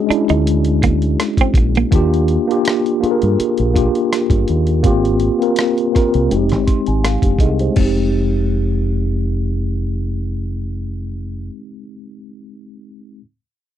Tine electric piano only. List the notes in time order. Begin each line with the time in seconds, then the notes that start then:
Already playing: G#3 C#4 D4 F#4 G#4
0.07 G#3 C#4 D4
0.11 E4
1.91 A#3 D4 F4
1.95 G4
2.48 A#3 D4 F4
2.52 G4
3.00 A#3 D4 F4
3.04 G#4
3.11 A#4
3.73 A#3 D4 F4 G4
4.83 A#3 C4 F4 G4
5.39 A#3 C4 F4 A#4
5.92 A#3 C4 F4
5.96 A#4
6.28 G#3 C4 D#4 F#4
6.39 G4
6.67 C6
6.87 G#5
7.04 F5
7.24 D4 G4
7.40 D#4 G#4 D#5
7.61 G4 C5
7.70 G#3
7.75 C4
7.80 D#4
7.86 G4